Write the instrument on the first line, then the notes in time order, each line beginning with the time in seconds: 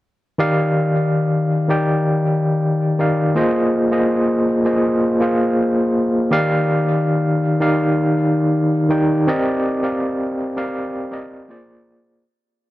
tine electric piano
0.38 D#3 D#4 G4 D5 F5
1.69 D#3 D#4 G4 D5 G5
2.99 D#3 D#4 G4 D5 F5
3.35 A#3 F4 G#4 C5 D#5
3.91 A#3 F4 G#4 C5 D#5
4.65 A#3 F4 G#4 C5 D#5
5.20 A#3 F4 G#4 C5 F5
6.31 D#3 D#4 G4 D5 F5
7.60 D#3 D#4 G4 D5 F5
8.89 D#3 D#4 G4 D5 G5
9.27 C4 G4 A#4 D5 D#5
9.83 C4 G4 A#4 D5 F5
10.56 C4 G4 A#4 D5 F5
11.11 C4 G4 A#4 D5 D#5
11.48 A#3 F4 G#4 C5 D5